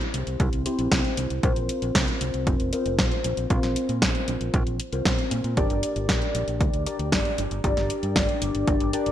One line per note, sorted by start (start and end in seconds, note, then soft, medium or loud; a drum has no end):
0.00 0.63 C4 medium
0.00 0.63 E4 medium
0.00 0.63 G4 medium
0.00 0.63 C5 medium
0.00 closed hi-hat soft
0.14 0.25 C2 medium
0.14 closed hi-hat medium
0.27 0.38 C2 medium
0.27 closed hi-hat soft
0.40 0.51 C2 loud
0.40 kick loud
0.40 closed hi-hat medium
0.53 0.64 C2 medium
0.53 closed hi-hat soft
0.66 0.89 C4 medium
0.66 0.89 E4 medium
0.66 0.89 G4 medium
0.66 0.89 C5 medium
0.66 closed hi-hat medium
0.79 0.90 A#1 medium
0.79 closed hi-hat soft
0.92 1.03 C2 medium
0.92 1.40 C4 medium
0.92 1.40 E4 medium
0.92 1.40 G4 medium
0.92 1.40 C5 medium
0.92 kick loud
0.92 snare loud
0.92 closed hi-hat medium
1.04 closed hi-hat soft
1.17 1.29 C2 medium
1.17 closed hi-hat medium
1.30 1.42 C2 medium
1.30 closed hi-hat soft
1.43 1.55 A#1 loud
1.43 2.70 C4 medium
1.43 2.70 F4 medium
1.43 2.70 A#4 medium
1.43 2.70 C5 loud
1.43 kick loud
1.43 closed hi-hat medium
1.56 1.68 A#1 medium
1.56 closed hi-hat soft
1.69 closed hi-hat medium
1.82 1.94 A#1 medium
1.82 closed hi-hat soft
1.95 2.07 C2 medium
1.95 kick loud
1.95 snare loud
1.95 closed hi-hat medium
2.08 closed hi-hat soft
2.21 2.32 C2 medium
2.21 closed hi-hat medium
2.34 2.45 C2 medium
2.34 closed hi-hat soft
2.47 2.58 F1 loud
2.47 kick loud
2.47 closed hi-hat medium
2.60 2.71 F1 medium
2.60 closed hi-hat soft
2.73 2.95 C4 medium
2.73 2.95 F4 medium
2.73 2.95 A#4 medium
2.73 2.95 C5 medium
2.73 closed hi-hat medium
2.86 2.97 F1 medium
2.86 closed hi-hat soft
2.99 3.10 A#1 medium
2.99 3.47 C4 medium
2.99 3.47 F4 medium
2.99 3.47 A#4 medium
2.99 3.47 C5 medium
2.99 kick loud
2.99 snare loud
2.99 closed hi-hat medium
3.11 closed hi-hat soft
3.24 3.36 A#1 medium
3.24 closed hi-hat medium
3.37 3.49 A#1 medium
3.37 closed hi-hat soft
3.50 3.62 A#1 medium
3.50 4.77 C4 medium
3.50 4.77 F4 medium
3.50 4.77 A#4 medium
3.50 4.77 C5 loud
3.50 kick loud
3.50 closed hi-hat medium
3.63 3.75 A#1 medium
3.63 snare soft
3.63 closed hi-hat soft
3.76 closed hi-hat medium
3.89 4.00 A#2 medium
3.89 closed hi-hat soft
4.02 4.13 A#1 medium
4.02 kick loud
4.02 snare loud
4.02 closed hi-hat medium
4.15 closed hi-hat soft
4.28 4.39 A#1 medium
4.28 closed hi-hat medium
4.41 4.52 A#1 medium
4.41 closed hi-hat soft
4.54 4.65 A#1 loud
4.54 kick loud
4.54 closed hi-hat medium
4.67 4.78 A#1 medium
4.67 closed hi-hat soft
4.80 closed hi-hat medium
4.93 5.04 C2 medium
4.93 5.54 C4 medium
4.93 5.54 F4 medium
4.93 5.54 A#4 medium
4.93 5.54 C5 medium
4.93 closed hi-hat soft
5.05 5.17 A#1 medium
5.05 kick loud
5.05 snare loud
5.05 closed hi-hat medium
5.18 closed hi-hat soft
5.31 5.43 A#2 medium
5.31 closed hi-hat medium
5.44 5.56 A#2 medium
5.44 closed hi-hat soft
5.57 5.69 G1 medium
5.57 6.83 D4 medium
5.57 6.83 G4 medium
5.57 6.83 A#4 medium
5.57 6.83 D5 loud
5.57 kick loud
5.57 closed hi-hat medium
5.70 5.82 G1 medium
5.70 closed hi-hat soft
5.83 closed hi-hat medium
5.96 6.07 G1 medium
5.96 closed hi-hat soft
6.09 6.20 A#1 medium
6.09 kick loud
6.09 snare loud
6.09 closed hi-hat medium
6.22 closed hi-hat soft
6.35 6.46 A#1 medium
6.35 closed hi-hat medium
6.48 6.59 A#1 medium
6.48 closed hi-hat soft
6.61 6.72 D2 loud
6.61 kick loud
6.61 closed hi-hat medium
6.73 6.85 D2 medium
6.73 closed hi-hat soft
6.86 7.09 D4 medium
6.86 7.09 G4 medium
6.86 7.09 A#4 medium
6.86 7.09 D5 medium
6.86 closed hi-hat medium
6.99 7.11 D2 medium
6.99 closed hi-hat soft
7.12 7.24 G1 medium
7.12 7.61 D4 medium
7.12 7.61 G4 medium
7.12 7.61 A#4 medium
7.12 7.61 D5 medium
7.12 kick loud
7.12 snare loud
7.12 closed hi-hat medium
7.25 closed hi-hat soft
7.38 7.50 G1 medium
7.38 closed hi-hat medium
7.51 7.62 G1 medium
7.51 closed hi-hat soft
7.64 7.75 G1 loud
7.64 8.90 D4 medium
7.64 8.90 G4 medium
7.64 8.90 A#4 medium
7.64 8.90 D5 loud
7.64 kick loud
7.64 closed hi-hat medium
7.77 7.88 G1 medium
7.77 snare soft
7.77 closed hi-hat soft
7.90 closed hi-hat medium
8.03 8.14 G2 medium
8.03 closed hi-hat soft
8.16 8.27 G1 medium
8.16 kick loud
8.16 snare loud
8.16 closed hi-hat medium
8.29 closed hi-hat soft
8.42 8.53 G1 medium
8.42 closed hi-hat medium
8.55 8.66 G1 medium
8.55 closed hi-hat soft
8.68 8.79 G1 loud
8.68 kick loud
8.68 closed hi-hat medium
8.80 8.92 G1 medium
8.80 closed hi-hat soft
8.93 9.12 D4 medium
8.93 9.12 G4 medium
8.93 9.12 A#4 medium
8.93 9.12 D5 medium
8.93 closed hi-hat medium
9.06 9.12 F1 medium
9.06 closed hi-hat soft